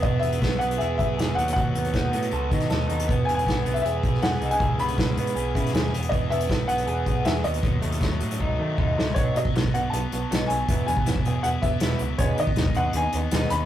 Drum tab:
HH |x-xx--xxx-x-x-xx|x-xxx-xxx-xxx-xx|x-xxx-xxx-x-x-xx|x-xxx-xxx-xxx-xx|
SD |----o-------o---|----o------oo---|----o------oo---|----o------oo---|
BD |o---o-----o-----|o---o-----o-----|o---o-----o-----|o---o-----o-----|

HH |x-xxx-xxx-x-x-xx|x-xxx-xx--------|x-x-x-x-x-x-x-x-|x-x-x-x-x-x-x-x-|
SD |----o-------o---|----o---------o-|----o-------o---|----o-------oo--|
BD |o---o-----o-----|o---o---o---o---|o--o-o----------|o--o-o----o-----|

HH |x-x-x-x-x-x-x-x-|
SD |----o-------o---|
BD |o--o-o----------|